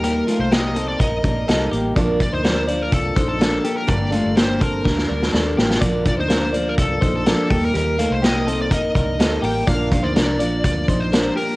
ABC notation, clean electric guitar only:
X:1
M:4/4
L:1/16
Q:1/4=124
K:Bb
V:1 name="Clean electric guitar"
[B,G]2 [A,F]2 [B,G]2 [CA]2 [EB]2 [DB]2 [EA]2 [B,G]2 | [Fd]3 [Ec] [DB]2 [Fd]4 [Ec]2 [DB]2 [B,G]2 | [B,G]2 [A,F]2 [B,G]2 [CA]2 [DB]2 [DB]2 [DA]2 [B,G]2 | [Fd]3 [Ec] [DB]2 [Fd]4 [Ec]2 [DB]2 [B,G]2 |
[B,G]2 [A,F]2 [B,G]2 [CA]2 [EB]2 [DB]2 [EA]2 [B,G]2 | [Fd]3 [Ec] [DB]2 [Fd]4 [Ec]2 [DB]2 [B,G]2 |]